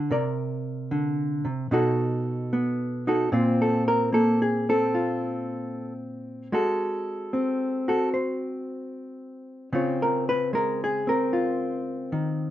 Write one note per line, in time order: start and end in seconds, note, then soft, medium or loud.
0.00 0.11 D3 medium
0.11 1.43 C3 medium
0.11 1.68 A#4 medium
0.11 1.69 D5 medium
0.91 1.46 D3 medium
1.45 1.71 C3 medium
1.71 3.29 B2 medium
1.71 3.06 D#4 medium
1.71 3.07 F#4 medium
1.71 3.08 A4 medium
2.53 3.29 B3 medium
3.07 3.29 D#4 medium
3.07 3.29 F#4 medium
3.07 3.34 A4 medium
3.32 6.49 A#2 medium
3.32 4.69 C4 soft
3.32 4.39 F4 soft
3.32 3.61 C5 soft
3.62 3.87 A4 medium
3.88 4.13 A#4 medium
4.12 6.49 A#3 medium
4.12 4.40 A4 medium
4.42 4.67 G#4 medium
4.69 7.33 C4 soft
4.69 5.92 A4 medium
4.95 6.50 F4 soft
6.52 9.69 G#3 medium
6.52 7.87 F#4 medium
6.52 7.88 A4 medium
7.33 9.73 C4 medium
7.88 9.70 F#4 medium
7.88 8.13 A4 medium
8.14 9.75 C5 medium
9.73 12.50 C#3 medium
9.73 11.07 C4 soft
9.73 10.80 F4 soft
9.73 10.00 C#5 soft
10.02 10.27 A#4 medium
10.29 10.54 B4 medium
10.53 12.50 G#3 medium
10.53 10.80 A#4 medium
10.84 11.08 G#4 medium
11.07 12.50 C4 soft
11.07 12.32 A#4 medium
11.33 12.50 F4 medium
12.12 12.50 D#3 medium